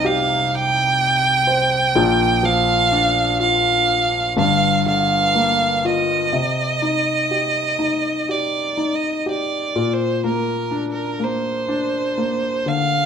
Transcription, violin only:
0, 0, Header, 1, 2, 480
1, 0, Start_track
1, 0, Key_signature, -3, "minor"
1, 0, Tempo, 960000
1, 1218, Time_signature, 4, 2, 24, 8
1, 2181, Tempo, 975610
1, 6458, End_track
2, 0, Start_track
2, 0, Title_t, "Violin"
2, 0, Program_c, 0, 40
2, 33, Note_on_c, 0, 77, 89
2, 274, Note_on_c, 0, 79, 105
2, 282, Note_off_c, 0, 77, 0
2, 1228, Note_on_c, 0, 77, 100
2, 1236, Note_off_c, 0, 79, 0
2, 1701, Note_off_c, 0, 77, 0
2, 1704, Note_on_c, 0, 77, 93
2, 2165, Note_off_c, 0, 77, 0
2, 2194, Note_on_c, 0, 77, 90
2, 2412, Note_off_c, 0, 77, 0
2, 2435, Note_on_c, 0, 77, 96
2, 2917, Note_on_c, 0, 75, 91
2, 2925, Note_off_c, 0, 77, 0
2, 4122, Note_on_c, 0, 74, 73
2, 4129, Note_off_c, 0, 75, 0
2, 4441, Note_on_c, 0, 75, 67
2, 4449, Note_off_c, 0, 74, 0
2, 4604, Note_on_c, 0, 74, 65
2, 4612, Note_off_c, 0, 75, 0
2, 4922, Note_on_c, 0, 72, 75
2, 4929, Note_off_c, 0, 74, 0
2, 5077, Note_off_c, 0, 72, 0
2, 5081, Note_on_c, 0, 70, 73
2, 5375, Note_off_c, 0, 70, 0
2, 5406, Note_on_c, 0, 70, 73
2, 5563, Note_on_c, 0, 72, 77
2, 5570, Note_off_c, 0, 70, 0
2, 6276, Note_on_c, 0, 77, 98
2, 6283, Note_off_c, 0, 72, 0
2, 6458, Note_off_c, 0, 77, 0
2, 6458, End_track
0, 0, End_of_file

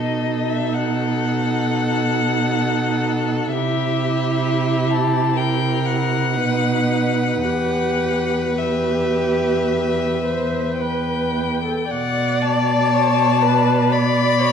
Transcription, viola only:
0, 0, Header, 1, 2, 480
1, 0, Start_track
1, 0, Key_signature, 1, "minor"
1, 0, Tempo, 931677
1, 1807, Time_signature, 4, 2, 24, 8
1, 2766, Tempo, 988468
1, 3246, Tempo, 1075269
1, 3726, Tempo, 1136364
1, 4686, Tempo, 1104972
1, 5646, Tempo, 1018676
1, 6126, Tempo, 970874
1, 6911, End_track
2, 0, Start_track
2, 0, Title_t, "Viola"
2, 0, Program_c, 0, 41
2, 0, Note_on_c, 0, 63, 35
2, 1814, Note_on_c, 0, 64, 45
2, 1822, Note_off_c, 0, 63, 0
2, 3250, Note_off_c, 0, 64, 0
2, 3252, Note_on_c, 0, 63, 39
2, 3727, Note_on_c, 0, 67, 34
2, 3733, Note_off_c, 0, 63, 0
2, 4165, Note_off_c, 0, 67, 0
2, 4209, Note_on_c, 0, 67, 45
2, 4905, Note_off_c, 0, 67, 0
2, 4924, Note_on_c, 0, 72, 39
2, 5163, Note_on_c, 0, 71, 35
2, 5170, Note_off_c, 0, 72, 0
2, 5527, Note_off_c, 0, 71, 0
2, 5529, Note_on_c, 0, 69, 35
2, 5640, Note_off_c, 0, 69, 0
2, 5642, Note_on_c, 0, 74, 57
2, 6124, Note_on_c, 0, 73, 57
2, 6131, Note_off_c, 0, 74, 0
2, 6367, Note_on_c, 0, 71, 57
2, 6375, Note_off_c, 0, 73, 0
2, 6614, Note_on_c, 0, 74, 63
2, 6621, Note_off_c, 0, 71, 0
2, 6845, Note_on_c, 0, 73, 55
2, 6853, Note_off_c, 0, 74, 0
2, 6911, Note_off_c, 0, 73, 0
2, 6911, End_track
0, 0, End_of_file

